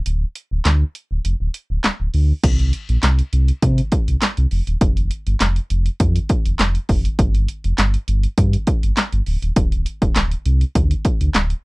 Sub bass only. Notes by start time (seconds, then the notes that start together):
0.06 D1
0.51 D1
0.65 D2
1.11 D1
1.25 F1
1.40 D1
1.70 D1
1.84 D1
2.00 D1
2.14 D2
2.44 C2
2.89 A#1
3.03 C2
3.33 C2
3.62 C3
4.08 C2
4.38 C2
4.52 F1
4.67 D#1
4.81 F1
5.27 G1
5.41 F1
5.70 F1
6.00 F2
6.46 F1
6.59 F1
6.89 F1
7.19 G1
7.64 F1
7.78 G1
8.08 G1
8.38 G2
8.83 G1
9.13 G1
9.27 D1
9.42 D#1
9.56 D1
10.02 D1
10.16 D1
10.46 C2
10.75 D2
11.21 D2
11.35 D1